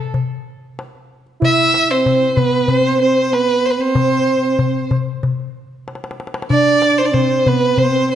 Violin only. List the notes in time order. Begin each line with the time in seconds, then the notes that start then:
1.46 E5
1.91 C5
2.37 B4
2.70 C5
3.01 C5
3.33 B4
3.66 C5
3.70 B4
3.81 C5
6.51 D5
6.98 C5
7.05 D5
7.13 C5
7.48 B4
7.78 C5
8.11 C5